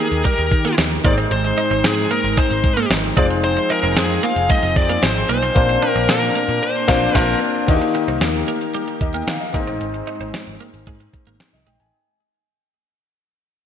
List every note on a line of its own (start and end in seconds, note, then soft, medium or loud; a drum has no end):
0.00 1.03 D#3 medium
0.00 1.06 D#3 medium
0.00 1.00 D#4 medium
0.00 5.52 D#4 medium
0.00 1.01 G4 medium
0.00 1.03 G4 medium
0.00 0.25 G#4 medium
0.00 1.02 A#4 medium
0.00 1.03 A#4 medium
0.12 0.22 D#2 loud
0.12 closed hi-hat medium
0.25 0.33 G3 medium
0.25 0.75 A#4 medium
0.25 kick loud
0.25 closed hi-hat loud
0.38 0.48 D#2 loud
0.38 muted clean electric guitar stroke soft
0.38 closed hi-hat medium
0.51 0.71 D#3 loud
0.51 kick loud
0.51 closed hi-hat medium
0.65 0.73 A#3 medium
0.65 closed hi-hat medium
0.78 0.98 D#2 medium
0.78 muted clean electric guitar stroke soft
0.78 snare loud
0.78 closed hi-hat loud
0.78 tambourine medium
0.91 closed hi-hat medium
1.04 1.25 G#1 loud
1.04 1.80 G#2 medium
1.04 3.15 G#3 medium
1.04 1.13 A#3 medium
1.04 7.64 C4 medium
1.04 3.12 D#4 medium
1.04 3.13 G#4 medium
1.04 3.14 C5 medium
1.04 1.12 D5 loud
1.04 kick loud
1.04 closed hi-hat medium
1.18 1.26 C4 medium
1.18 closed hi-hat medium
1.31 1.51 G#1 loud
1.31 1.86 C5 loud
1.31 closed hi-hat medium
1.44 muted clean electric guitar stroke soft
1.44 closed hi-hat medium
1.58 1.66 D#4 medium
1.58 closed hi-hat medium
1.71 1.81 G#1 loud
1.71 1.79 C4 medium
1.71 closed hi-hat medium
1.84 2.04 G#2 loud
1.84 2.11 G#4 loud
1.84 snare loud
1.84 closed hi-hat medium
1.84 tambourine medium
1.97 closed hi-hat medium
2.11 2.19 A#3 medium
2.11 2.39 A#4 medium
2.11 closed hi-hat medium
2.24 2.34 G#1 loud
2.24 closed hi-hat medium
2.37 2.45 G#3 medium
2.37 2.87 C5 medium
2.37 kick loud
2.37 closed hi-hat loud
2.50 2.61 G#1 loud
2.50 muted clean electric guitar stroke soft
2.50 closed hi-hat medium
2.64 2.84 G#2 loud
2.64 kick loud
2.64 closed hi-hat medium
2.77 2.85 A#3 medium
2.77 closed hi-hat medium
2.90 3.10 G#1 loud
2.90 snare loud
2.90 closed hi-hat medium
2.90 tambourine medium
3.04 closed hi-hat medium
3.16 3.57 F1 loud
3.16 5.53 F3 medium
3.16 5.25 G#3 medium
3.16 3.25 G#3 medium
3.16 5.25 C4 medium
3.16 5.25 D#4 medium
3.16 5.26 F4 medium
3.16 5.53 G#4 loud
3.16 5.26 C5 medium
3.16 3.24 D5 loud
3.16 kick loud
3.16 closed hi-hat medium
3.30 closed hi-hat medium
3.44 3.71 C5 loud
3.44 closed hi-hat medium
3.57 muted clean electric guitar stroke soft
3.57 closed hi-hat medium
3.70 3.78 D#4 medium
3.70 3.97 A#4 loud
3.70 closed hi-hat medium
3.83 3.93 F1 loud
3.83 3.91 C4 medium
3.83 closed hi-hat medium
3.96 4.17 F2 loud
3.96 4.24 G#4 loud
3.96 snare loud
3.96 closed hi-hat medium
3.96 tambourine medium
4.10 closed hi-hat medium
4.23 4.31 A#3 medium
4.23 4.51 F5 loud
4.23 closed hi-hat medium
4.36 4.46 F1 medium
4.36 closed hi-hat medium
4.50 4.58 G#3 medium
4.50 4.77 D#5 loud
4.50 kick loud
4.50 closed hi-hat medium
4.63 4.73 F1 medium
4.63 muted clean electric guitar stroke soft
4.63 closed hi-hat medium
4.76 4.96 F2 medium
4.76 5.01 D5 loud
4.76 kick medium
4.76 closed hi-hat medium
4.89 4.98 A#3 medium
4.89 closed hi-hat medium
5.03 5.23 G#1 medium
5.03 5.29 C5 loud
5.03 muted clean electric guitar stroke soft
5.03 snare loud
5.03 closed hi-hat loud
5.03 tambourine medium
5.16 closed hi-hat medium
5.29 5.49 B1 medium
5.29 5.37 A#3 medium
5.29 5.90 C5 loud
5.29 closed hi-hat medium
5.43 5.51 C4 medium
5.43 closed hi-hat medium
5.55 5.76 A#1 loud
5.55 6.32 A#2 medium
5.55 6.59 A#3 medium
5.55 7.66 A#3 medium
5.55 6.60 C4 medium
5.55 6.60 D4 medium
5.55 7.66 D4 loud
5.55 6.60 F4 medium
5.55 6.61 C5 medium
5.55 kick loud
5.55 closed hi-hat medium
5.69 muted clean electric guitar stroke soft
5.69 closed hi-hat medium
5.82 5.90 D4 medium
5.82 closed hi-hat medium
5.90 6.10 A#4 loud
5.96 6.06 A#1 loud
5.96 6.04 C4 medium
5.96 closed hi-hat medium
6.09 6.29 A#2 loud
6.09 6.64 A#4 medium
6.09 snare loud
6.09 closed hi-hat medium
6.09 tambourine medium
6.22 closed hi-hat medium
6.35 6.43 A#3 medium
6.35 closed hi-hat medium
6.49 6.59 A#2 loud
6.49 closed hi-hat medium
6.63 7.18 C5 medium
6.88 7.07 A#1 medium
6.88 7.06 A#3 loud
6.88 7.06 C4 loud
6.88 7.07 D4 loud
6.88 7.07 F4 loud
6.88 7.07 C5 loud
6.88 kick loud
6.88 snare loud
6.88 crash medium
7.15 7.33 A#1 loud
7.15 7.33 A#3 loud
7.15 7.33 C4 loud
7.15 7.33 D4 loud
7.15 7.33 F4 loud
7.15 7.38 A#4 medium
7.15 7.34 C5 loud
7.15 kick loud
7.15 snare loud
7.15 crash medium
7.67 7.78 D#2 loud
7.67 9.52 D#3 medium
7.67 8.44 D#3 medium
7.67 9.50 A#3 medium
7.67 9.50 D#4 medium
7.67 11.89 D#4 medium
7.67 7.75 F#4 medium
7.67 9.52 G4 medium
7.67 9.52 A#4 medium
7.67 8.99 D#5 medium
7.67 kick loud
7.67 closed hi-hat medium
7.67 crash medium
7.75 9.54 G4 medium
7.82 muted clean electric guitar stroke soft
7.82 closed hi-hat medium
7.95 8.03 D#4 medium
7.95 closed hi-hat medium
8.08 8.18 C2 medium
8.08 8.16 C4 medium
8.08 closed hi-hat soft
8.21 8.41 D#2 medium
8.21 snare loud
8.21 closed hi-hat medium
8.21 tambourine medium
8.34 closed hi-hat medium
8.48 8.56 A#3 medium
8.48 closed hi-hat medium
8.61 closed hi-hat medium
8.74 8.83 G3 medium
8.74 closed hi-hat medium
8.88 muted clean electric guitar stroke soft
8.88 closed hi-hat medium
9.01 9.21 D#2 medium
9.01 9.14 D#5 medium
9.01 kick medium
9.01 closed hi-hat medium
9.14 9.22 A#3 medium
9.14 9.27 G5 medium
9.14 closed hi-hat soft
9.27 9.38 D#3 loud
9.27 9.40 F5 medium
9.27 muted clean electric guitar stroke soft
9.27 snare loud
9.27 closed hi-hat medium
9.27 tambourine medium
9.40 9.53 D#5 medium
9.40 closed hi-hat soft
9.53 9.64 G#1 loud
9.53 10.30 G#2 medium
9.53 11.91 G#3 medium
9.53 9.60 A#3 medium
9.53 9.62 A#3 medium
9.53 11.91 C4 medium
9.53 11.62 D#4 medium
9.53 11.63 G#4 medium
9.53 11.37 D#5 medium
9.53 kick loud
9.53 closed hi-hat medium
9.59 11.65 C4 medium
9.67 9.77 A1 medium
9.67 9.75 C4 medium
9.67 closed hi-hat medium
9.81 10.01 G#1 loud
9.81 closed hi-hat medium
9.94 muted clean electric guitar stroke soft
9.94 closed hi-hat medium
10.07 10.15 D#4 medium
10.07 closed hi-hat medium
10.21 10.31 G#1 medium
10.21 10.29 C4 medium
10.21 closed hi-hat soft
10.34 snare loud
10.34 closed hi-hat medium
10.34 tambourine medium
10.47 10.57 G#1 medium
10.47 closed hi-hat medium
10.60 10.68 A#3 medium
10.60 closed hi-hat medium
10.74 10.84 G#1 medium
10.74 closed hi-hat medium
10.87 11.07 G#2 loud
10.87 10.95 G#3 medium
10.87 kick loud
10.87 closed hi-hat medium
11.00 muted clean electric guitar stroke soft
11.00 closed hi-hat medium
11.13 kick medium
11.13 closed hi-hat medium
11.27 11.37 G#1 medium
11.27 11.35 A#3 medium
11.27 closed hi-hat medium
11.40 snare loud
11.40 closed hi-hat medium
11.40 tambourine medium
11.53 11.63 C2 medium
11.53 11.66 D#5 medium
11.53 closed hi-hat soft
11.67 11.77 A#1 medium
11.67 11.75 G#3 medium
11.67 11.79 G5 medium
11.67 closed hi-hat medium
11.80 11.90 A1 medium
11.80 12.05 G#5 medium
11.80 closed hi-hat medium